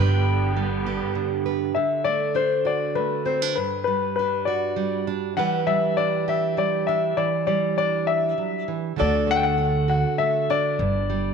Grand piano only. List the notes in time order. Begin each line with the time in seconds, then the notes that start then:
Already playing: B4 G5
1.75 E5
2.04 D5
2.36 C5
2.66 D5
2.95 B4
3.26 C5
3.56 B4
3.84 B4
4.16 B4
4.45 D5
5.37 F#5
5.67 E5
5.97 D5
6.29 E5
6.58 D5
6.87 E5
7.17 D5
7.47 D5
7.78 D5
8.07 E5
9.00 D5
9.31 F#5
9.36 G5
9.43 F#5
9.90 F#5
10.18 E5
10.50 D5